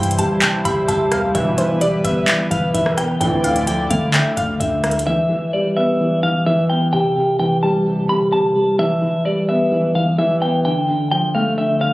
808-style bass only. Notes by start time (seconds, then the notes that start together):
Already playing: G2
0.19 C2
0.65 C2
0.88 C2
1.12 E2
1.23 C2
1.35 E1
1.81 E1
2.05 E1
2.51 E1
2.74 E1
3.09 G1
3.21 D2
3.91 D3
4.37 D2
4.60 D2